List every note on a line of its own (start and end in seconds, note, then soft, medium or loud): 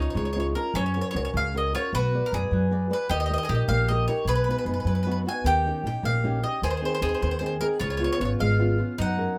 0.00 0.28 C#4 soft
0.00 0.28 D#4 soft
0.00 0.51 D#4 medium
0.00 0.28 F4 soft
0.00 0.08 C#5 soft
0.10 0.16 C#5 soft
0.15 0.54 C#2 medium
0.15 0.54 G#3 medium
0.15 0.24 C#5 medium
0.25 0.31 C#5 soft
0.33 0.55 C#4 soft
0.33 0.55 D#4 soft
0.33 0.55 F4 soft
0.33 0.39 C#5 medium
0.40 0.46 C#5 medium
0.55 0.71 C#4 soft
0.55 0.72 D#4 soft
0.55 0.71 F4 soft
0.55 0.74 A#4 medium
0.74 1.00 F#2 medium
0.74 1.14 F#3 medium
0.74 1.70 C#4 medium
0.74 0.83 C#5 medium
0.86 0.92 C#5 soft
0.94 1.14 C#4 soft
0.94 1.14 F#4 soft
0.94 1.14 A#4 soft
0.94 1.00 C#5 soft
1.01 1.07 C#5 medium
1.11 1.27 C#2 medium
1.11 1.15 C#5 medium
1.15 1.47 C#4 soft
1.15 1.47 F#4 soft
1.15 1.47 A#4 soft
1.15 1.22 C#5 medium
1.25 1.30 C#5 medium
1.34 1.72 C#2 medium
1.34 1.73 C#3 medium
1.34 1.54 F5 medium
1.54 1.73 C#4 soft
1.54 1.74 F#4 soft
1.54 1.74 A#4 medium
1.54 1.74 D#5 medium
1.75 1.90 C#4 soft
1.75 1.94 F4 medium
1.75 1.90 F#4 soft
1.75 1.90 A#4 medium
1.75 1.94 C#5 medium
1.93 2.18 B1 medium
1.93 2.14 B3 medium
1.93 2.24 F#4 medium
1.93 2.92 B4 medium
2.14 2.32 F#4 soft
2.14 2.33 B4 soft
2.14 2.33 D5 soft
2.26 2.33 A#4 medium
2.32 2.45 F#2 medium
2.32 2.64 F#4 soft
2.32 3.09 G#4 medium
2.32 2.65 B4 soft
2.32 2.65 D5 medium
2.51 2.89 F#2 medium
2.51 2.90 F#3 medium
2.71 2.89 F#4 medium
2.71 2.89 B4 soft
2.71 2.90 D5 medium
2.90 3.06 F#4 soft
2.90 3.06 B4 soft
2.90 3.10 B4 medium
2.90 3.06 D5 medium
3.09 3.35 D#2 medium
3.09 3.48 D#3 medium
3.09 3.43 G4 medium
3.09 3.18 D#5 medium
3.20 3.25 D#5 medium
3.26 3.49 D#4 soft
3.26 3.32 D#5 medium
3.30 3.49 G4 soft
3.30 3.49 A#4 soft
3.30 3.37 D#5 medium
3.38 3.44 D#5 medium
3.43 3.49 G#4 medium
3.43 3.53 D#5 medium
3.49 3.62 A#1 medium
3.49 3.81 D#4 medium
3.49 4.23 G4 medium
3.49 3.82 G4 soft
3.49 3.82 A#4 medium
3.55 3.62 D#5 soft
3.68 4.06 A#1 medium
3.68 4.08 A#3 medium
3.68 3.87 F5 medium
3.88 4.08 D#4 medium
3.88 4.08 G4 medium
3.88 4.08 A#4 medium
3.88 4.07 D#5 medium
4.08 4.24 D#4 medium
4.08 4.24 G4 soft
4.08 4.24 A#4 medium
4.08 4.26 C#5 medium
4.25 4.51 B1 medium
4.25 4.66 B2 medium
4.25 5.22 G#4 medium
4.25 4.34 B4 medium
4.35 4.43 B4 medium
4.44 4.67 B3 soft
4.44 4.49 B4 medium
4.49 4.67 D#4 soft
4.49 4.68 F#4 soft
4.49 4.57 B4 medium
4.58 4.65 B4 medium
4.65 4.78 F#2 medium
4.65 4.99 B3 soft
4.65 4.99 D#4 soft
4.65 5.00 F#4 medium
4.65 4.72 B4 medium
4.74 4.79 B4 soft
4.80 4.86 B4 soft
4.85 5.24 F#2 medium
4.85 5.25 F#3 medium
4.85 4.94 B4 medium
4.95 5.02 B4 soft
5.03 5.25 B3 soft
5.03 5.25 D#4 soft
5.03 5.26 F#4 medium
5.03 5.10 B4 medium
5.11 5.18 B4 medium
5.26 5.42 B3 soft
5.26 5.42 D#4 soft
5.26 5.42 F#4 soft
5.26 5.46 G#5 medium
5.44 5.71 D#2 medium
5.44 5.84 D#3 medium
5.44 6.64 G4 medium
5.44 5.83 G5 medium
5.66 5.84 C#4 soft
5.66 5.84 D#4 soft
5.66 5.85 G4 medium
5.84 5.97 A#1 medium
5.84 6.17 C#4 soft
5.84 6.17 D#4 soft
5.84 6.17 G4 medium
5.84 6.04 G5 medium
6.03 6.42 A#1 medium
6.03 6.43 A#3 medium
6.03 6.42 F5 medium
6.24 6.42 C#4 medium
6.24 6.42 D#4 medium
6.24 6.42 G4 medium
6.43 6.59 C#4 soft
6.43 6.59 D#4 soft
6.43 6.59 G4 soft
6.43 6.63 D#5 medium
6.62 6.88 D#2 medium
6.62 7.02 D#3 medium
6.62 7.01 G#4 medium
6.62 6.69 C5 medium
6.70 6.76 C5 medium
6.77 6.84 C5 soft
6.82 7.00 C4 soft
6.82 7.00 D#4 soft
6.82 7.00 G#4 soft
6.82 6.93 C5 medium
6.95 7.01 C5 medium
7.01 7.15 D#2 medium
7.01 7.33 C4 soft
7.01 7.33 D#4 soft
7.01 7.34 G#4 medium
7.01 7.79 G#4 medium
7.01 7.08 C5 medium
7.09 7.13 C5 soft
7.14 7.21 C5 medium
7.21 7.60 D#2 medium
7.21 7.60 D#3 medium
7.21 7.30 C5 medium
7.31 7.38 C5 soft
7.39 7.59 C4 medium
7.39 7.59 D#4 medium
7.39 7.60 G#4 medium
7.39 7.45 C5 medium
7.46 7.54 C5 medium
7.60 7.76 C4 soft
7.60 7.77 D#4 soft
7.60 7.77 G#4 medium
7.60 7.66 A#4 medium
7.80 8.06 C#2 medium
7.80 8.18 C#3 medium
7.80 8.98 F4 medium
7.80 7.88 C#5 medium
7.90 7.96 C#5 medium
7.97 8.19 B3 soft
7.97 8.19 C#4 soft
7.97 8.20 F4 medium
7.97 8.03 C#5 medium
8.04 8.11 C#5 medium
8.12 8.19 C#5 medium
8.20 8.33 G#1 medium
8.20 8.51 B3 soft
8.20 8.51 C#4 soft
8.20 8.52 F4 medium
8.20 8.24 C#5 medium
8.25 8.32 C#5 medium
8.39 8.78 G#1 medium
8.39 8.78 G#3 medium
8.39 9.01 F5 medium
8.59 8.77 B3 soft
8.59 8.78 C#4 medium
8.59 8.78 F4 medium
8.78 8.94 B3 medium
8.78 8.95 C#4 soft
8.78 8.95 F4 medium
8.98 9.24 F#2 medium
8.98 9.37 F#3 medium
8.98 9.38 D#4 medium
8.98 9.38 F#5 medium
9.17 9.37 C#4 soft
9.17 9.37 F#4 soft
9.17 9.37 A#4 soft